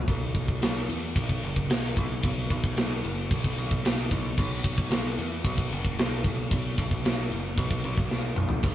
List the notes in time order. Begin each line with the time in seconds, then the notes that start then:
0.07 B1, kick, ride
0.35 kick, ride
0.48 kick
0.62 B1, snare, ride
0.89 E2, ride
1.16 B1, kick, ride
1.29 kick
1.43 F#1, ride
1.56 kick
1.69 B1, snare, ride
1.96 B1, kick, ride
2.23 B1, kick, ride
2.50 B1, kick, ride
2.64 kick
2.77 B1, snare, ride
3.04 F#1, ride
3.31 B1, kick, ride
3.44 kick
3.58 B1, ride
3.71 kick
3.84 B1, snare, ride
4.11 B1, kick, ride
4.38 B1, kick, crash
4.64 kick, ride
4.78 kick
4.90 B1, snare, ride
5.18 E2, ride
5.44 B1, kick, ride
5.58 kick
5.72 F#1, ride
5.85 kick
5.99 B1, snare, ride
6.24 B1, kick, ride
6.51 B1, kick, ride
6.78 B1, kick, ride
6.91 kick
7.04 B1, snare, ride
7.31 F#1, ride
7.58 B1, kick, ride
7.71 kick
7.84 B1, ride
7.98 kick
8.11 B1, snare
8.36 B1, mid tom
8.49 floor tom
8.63 B1, kick, crash